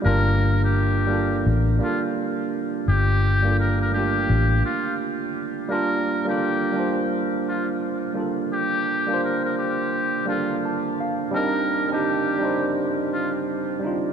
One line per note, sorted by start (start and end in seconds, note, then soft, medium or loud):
0.00 0.02 G3 medium
0.00 1.01 G3 medium
0.00 0.04 A#3 medium
0.00 1.01 A#3 medium
0.00 0.05 D4 medium
0.00 0.07 F4 medium
0.00 1.13 A4 medium
0.05 1.43 G1 loud
0.05 1.02 D4 medium
0.05 1.03 F4 medium
0.05 0.59 A#4 loud
0.05 1.04 A#4 loud
0.64 1.43 G4 medium
1.07 1.74 G3 medium
1.07 1.75 A#3 medium
1.07 1.75 D4 medium
1.12 1.76 F4 medium
1.12 1.77 A4 medium
1.46 1.78 A1 medium
1.79 3.10 G3 medium
1.79 3.11 A#3 medium
1.79 3.11 D4 medium
1.79 2.02 F4 medium
1.84 3.12 F4 medium
1.84 3.13 A4 medium
2.88 4.25 G1 medium
2.88 3.55 G4 loud
3.43 3.88 G3 medium
3.43 3.89 A#3 medium
3.43 3.90 D4 medium
3.48 3.90 F4 medium
3.48 3.91 A4 medium
3.60 3.79 A#4 medium
3.81 3.93 A#4 medium
3.92 5.22 G3 medium
3.92 4.02 A3 medium
3.92 5.24 D4 medium
3.92 4.60 G4 medium
3.97 5.26 A#3 medium
3.97 5.25 F4 medium
3.97 5.25 G4 medium
4.30 4.61 A1 medium
4.65 4.97 F4 medium
5.68 6.19 G3 medium
5.68 6.20 A#3 medium
5.68 6.21 D4 medium
5.68 6.24 A#4 medium
5.73 6.21 F4 medium
5.73 6.22 A#4 loud
6.25 6.70 G3 medium
6.25 6.71 A#3 medium
6.25 6.72 D4 medium
6.29 6.73 F4 medium
6.29 7.08 G4 medium
6.29 6.74 A4 medium
6.72 8.03 G3 medium
6.72 8.04 A#3 medium
6.72 8.05 D4 medium
6.78 8.06 F4 medium
6.78 8.07 C5 medium
7.49 7.68 F4 medium
8.13 8.95 G3 medium
8.13 8.96 A#3 medium
8.13 8.97 D4 medium
8.18 8.98 F4 medium
8.18 8.99 A4 medium
8.53 9.19 G4 loud
9.07 10.17 G3 medium
9.07 10.18 A#3 medium
9.07 10.19 D4 medium
9.12 10.20 F4 medium
9.12 10.20 C5 medium
9.24 9.43 A#4 medium
9.45 9.57 A#4 medium
9.59 10.25 G4 medium
10.26 11.24 G3 medium
10.26 11.25 A#3 medium
10.26 11.26 D4 medium
10.26 10.61 F4 medium
10.31 11.27 F4 medium
10.31 11.28 A4 medium
10.65 10.98 A5 medium
11.00 11.33 F5 medium
11.31 11.83 G3 loud
11.31 11.84 C4 medium
11.31 11.85 D4 medium
11.35 11.85 D#4 medium
11.35 11.89 A#4 loud
11.35 11.86 A#4 loud
11.89 12.34 G3 medium
11.89 12.35 C4 medium
11.89 12.36 D4 medium
11.93 12.37 D#4 medium
11.93 12.72 G4 medium
11.93 12.38 G4 medium
12.38 13.69 G3 medium
12.38 13.70 C4 medium
12.38 13.70 D4 medium
12.43 13.71 D#4 medium
12.43 13.72 C5 medium
13.13 13.32 F4 medium
13.79 14.13 G3 medium
13.79 14.13 C4 medium
13.79 14.13 D4 medium
13.85 14.13 D#4 medium
13.85 14.13 F4 medium